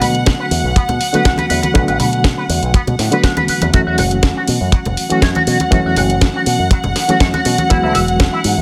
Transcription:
Already playing: D3 F#3 A3 B3 F#4 F#5
0.01 B2 B5, open hi-hat, low conga
0.15 closed hi-hat
0.26 kick, snare, closed hi-hat
0.39 B4
0.51 E2, open hi-hat
0.64 B1
0.76 B3, kick, closed hi-hat
0.89 B2, closed hi-hat, low conga
1.01 open hi-hat
1.13 D3 F#3 A3 B3 F#4 B4, muted fingered electric bass stroke, closed hi-hat
1.25 B1 F#5, kick, snare, closed hi-hat
1.38 B4, closed hi-hat, high conga
1.50 E2 B4, open hi-hat
1.63 B4, closed hi-hat, high conga
1.74 B1 D3 F#3 A3 B3 F#4 B4, kick, closed hi-hat
1.88 A1 B4, closed hi-hat
2.00 B2 B5, open hi-hat, low conga
2.13 closed hi-hat
2.24 kick, snare, closed hi-hat
2.37 B4
2.49 E2, open hi-hat
2.62 B1, closed hi-hat
2.74 B3, kick, closed hi-hat
2.87 B2, closed hi-hat, low conga
2.99 A2, snare, open hi-hat
3.12 D3 F#3 A3 B3 F#4 B4, closed hi-hat
3.23 F#5, kick, snare, closed hi-hat
3.37 B4, closed hi-hat, high conga
3.48 B4, muted fingered electric bass stroke, open hi-hat
3.62 E2 B4, closed hi-hat, high conga
3.73 F#2 E3 F#3 A3 C#4 F#4 F#5, kick, closed hi-hat
3.87 E2 F#4
3.98 F#1 F#5, open hi-hat, low conga
4.11 closed hi-hat
4.23 kick, snare, closed hi-hat
4.36 F#4
4.47 B2, open hi-hat
4.61 F#2
4.72 F#3, muted fingered electric bass stroke, kick, closed hi-hat
4.85 F#1, closed hi-hat, low conga
4.97 open hi-hat
5.09 E3 F#3 A3 C#4 F#4, muted fingered electric bass stroke, closed hi-hat
5.22 F#2 C#5, kick, snare, closed hi-hat
5.35 F#4, closed hi-hat, high conga
5.47 B2 F#4, open hi-hat
5.60 F#4, closed hi-hat, high conga
5.71 F#2 E3 F#3 A3 C#4 F#4, kick, closed hi-hat
5.85 E2 F#4
5.96 F#1 F#5, open hi-hat, low conga
6.10 closed hi-hat
6.21 kick, snare, closed hi-hat
6.35 F#4
6.46 B2, open hi-hat
6.59 F#2
6.71 F#3, kick, closed hi-hat
6.84 F#1, closed hi-hat, low conga
6.96 snare, open hi-hat
7.08 E3 F#3 A3 C#4 F#4, muted fingered electric bass stroke, closed hi-hat
7.20 F#2 C#5, kick, snare, closed hi-hat
7.34 F#4, closed hi-hat, high conga
7.45 B2 F#4, open hi-hat
7.58 F#4, closed hi-hat, high conga
7.69 E2 E3 F#3 G#3 B3 E4 F#4, kick, closed hi-hat
7.83 D2 E4
7.95 E1 E5, open hi-hat, low conga
8.08 closed hi-hat
8.20 kick, snare, closed hi-hat
8.33 E4
8.44 G#2, open hi-hat
8.57 E2

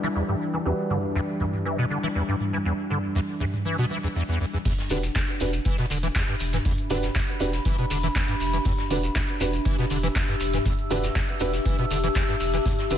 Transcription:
Already playing: E3 G3 D4 E5 B5
0.03 E3
0.15 E2
0.28 G2
0.53 E3
0.65 E2 D4 F#4 G4 B4
0.90 D3, mid tom
1.15 E2
1.40 E2, mid tom
1.53 mid tom
1.65 E3
1.78 B2
1.90 D3
2.03 E3
2.15 E2
2.28 G2
2.40 mid tom
2.53 E3
2.65 E2
2.90 D3, mid tom
3.15 E2
3.40 E2, mid tom
3.53 mid tom
3.65 E3
3.78 B2
3.90 E3
4.03 E2
4.16 E2
4.29 E2
4.41 E2
4.54 E2
4.65 E2 D4, kick, closed hi-hat, mid tom, tambourine, crash, shekere
4.78 G4, snare, closed hi-hat
4.90 E1 D3 D4 F#4 G4 B4, open hi-hat, tambourine, shekere
5.03 closed hi-hat, shekere
5.15 E2, kick, snare, clap, closed hi-hat, tambourine, shekere
5.28 closed hi-hat
5.40 E1 E2 D4 F#4 G4 B4, open hi-hat, tambourine, shekere
5.53 closed hi-hat, shekere
5.65 E3, kick, closed hi-hat, tambourine, shekere
5.78 B2, snare, closed hi-hat
5.87 E1 D3 E5 B5, open hi-hat, tambourine
5.91 shekere
6.03 E3, closed hi-hat, shekere
6.15 E2, kick, snare, clap, closed hi-hat, tambourine, shekere
6.28 G2, snare, closed hi-hat
6.40 E1, open hi-hat, tambourine, shekere
6.53 E3, snare, closed hi-hat, mid tom, shekere
6.65 E2, kick, closed hi-hat, mid tom, tambourine, shekere
6.78 closed hi-hat
6.90 E1 D3 D4 F#4 G4 B4, mid tom, open hi-hat, tambourine, shekere
7.03 snare, closed hi-hat, shekere
7.15 E2, kick, snare, clap, closed hi-hat, tambourine, shekere
7.28 closed hi-hat
7.40 E1 E2 D4 F#4 G4 B4, open hi-hat, tambourine, shekere
7.53 snare, closed hi-hat, shekere
7.65 E3, kick, closed hi-hat, tambourine, shekere
7.78 B2, closed hi-hat
7.90 E1 D3, open hi-hat, tambourine, shekere
8.03 E3, closed hi-hat, shekere
8.15 E2, kick, snare, clap, closed hi-hat, tambourine, shekere
8.28 G2, snare, closed hi-hat
8.40 E1, open hi-hat, shekere
8.53 E3, closed hi-hat, shekere
8.65 E2, kick, closed hi-hat, mid tom, tambourine, shekere
8.78 snare, closed hi-hat
8.90 E1 D3 D4 F#4 G4 B4, open hi-hat, tambourine, shekere
9.03 closed hi-hat, shekere
9.15 E2, kick, snare, clap, closed hi-hat, tambourine, shekere
9.28 closed hi-hat
9.40 E1 E2 D4 F#4 G4 B4, open hi-hat, tambourine, shekere
9.53 closed hi-hat, shekere
9.65 E3, kick, closed hi-hat, tambourine, shekere
9.78 B2, snare, closed hi-hat
9.90 E1 D3 E6, open hi-hat, tambourine, shekere
10.03 E3, closed hi-hat, shekere
10.15 E2, kick, snare, clap, closed hi-hat, tambourine, shekere
10.28 G2, snare, closed hi-hat
10.40 E1, open hi-hat, tambourine, shekere
10.54 E3, snare, closed hi-hat, mid tom, shekere
10.65 E2, kick, closed hi-hat, mid tom, tambourine, shekere
10.79 closed hi-hat
10.90 E1 D3 D4 F#4 G4 B4, mid tom, open hi-hat, tambourine, shekere
11.04 snare, closed hi-hat, shekere
11.15 E2, kick, snare, clap, closed hi-hat, tambourine, shekere
11.29 closed hi-hat
11.40 E1 E2 D4 F#4 G4 B4, open hi-hat, tambourine, shekere
11.53 snare, closed hi-hat, shekere
11.65 E3, kick, closed hi-hat, tambourine, shekere
11.78 B2, closed hi-hat
11.90 E1 D3, open hi-hat, tambourine, shekere
12.04 E3, closed hi-hat, shekere
12.15 E2, kick, snare, clap, closed hi-hat, tambourine, shekere
12.29 G2, snare, closed hi-hat
12.40 E1, open hi-hat, shekere
12.54 E3, closed hi-hat, shekere
12.65 E2, kick, closed hi-hat, mid tom, tambourine, shekere
12.79 snare, closed hi-hat
12.90 E1 D3 D4 F#4 G4 B4, open hi-hat, tambourine, shekere

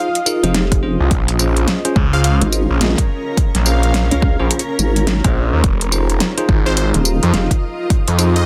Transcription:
Already playing: F4 D#5 F5
0.15 closed hi-hat
0.26 D#4 F4 G#4 A#4, tambourine
0.43 F1 D#4 F4 G#4 C5, closed hi-hat
0.54 snare, closed hi-hat
0.72 kick, cross-stick, closed hi-hat
0.83 C#4 F4 G#4 C5
1.00 C2
1.11 A#1 C#4, kick, closed hi-hat
1.28 closed hi-hat
1.39 C#4 F4 G#4 A#4 C5, tambourine
1.57 closed hi-hat
1.68 snare, closed hi-hat
1.85 C#4 F4 G#4 C5, closed hi-hat
1.96 C#2, kick
2.13 C#4 F4 G#4 C5 F5
2.24 F5, closed hi-hat
2.41 G#1, closed hi-hat
2.52 tambourine
2.70 A#1
2.81 A#1 C#4 F4 G#4 D#5, snare, closed hi-hat
2.84 snare
2.87 snare
2.90 snare
2.95 kick, snare, closed hi-hat
3.37 kick, closed hi-hat
3.55 A#1, snare, closed hi-hat
3.66 C#4 F4 G#4 C5 F5, tambourine
3.83 closed hi-hat
3.94 snare, closed hi-hat
4.11 C#2 C#4 F4 G#4 C#5, closed hi-hat
4.22 kick
4.39 A#1 C#4 F4 G#4 C5
4.51 closed hi-hat
4.59 closed hi-hat
4.79 G#1, tambourine
4.96 closed hi-hat
5.07 snare, closed hi-hat
5.24 A#1 C#4 F4 G#4 C5, kick, cross-stick, closed hi-hat
5.53 D#2
5.64 F1 F4, kick, closed hi-hat
5.81 closed hi-hat
5.92 D#4 F4 G#4 C5, tambourine
6.10 closed hi-hat
6.17 D#5, snare, closed hi-hat
6.38 D#4 F4 G#4 C5, closed hi-hat
6.49 G#1, kick
6.66 D#4 F4 G#4 C5
6.77 C5, closed hi-hat
6.94 D#1, closed hi-hat
7.05 tambourine
7.23 F2, closed hi-hat
7.34 F1 D#4 F4 G#4 F5, snare, closed hi-hat
7.51 kick, closed hi-hat
7.90 kick, closed hi-hat
8.08 F2, closed hi-hat
8.19 D#4 F4 G#4 C5, tambourine
8.36 D#5, closed hi-hat

